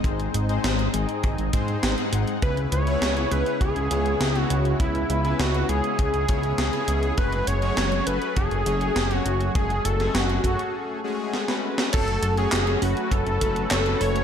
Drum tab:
CC |----------------|----------------|----------------|----------------|
HH |xxxxxxxxxxxxxxxx|xxxxxxxxxxxxxxxx|xxxxxxxxxxxxxxxx|xxxxxxxxxxxxxxxx|
CP |----------------|----------------|----------------|----------------|
SD |----o-------o---|----o-------o---|----o-------o---|----o-------o---|
BD |o-------o-o-----|o-------o-------|o-------o-o-----|o-------o-------|

CC |----------------|x---------------|
HH |xxxxxxxx--------|xxxxxxoxxxxxxxox|
CP |----------------|----x-------x---|
SD |---oo-------oo-o|----o-------o---|
BD |o-----o---------|o-------o-o-----|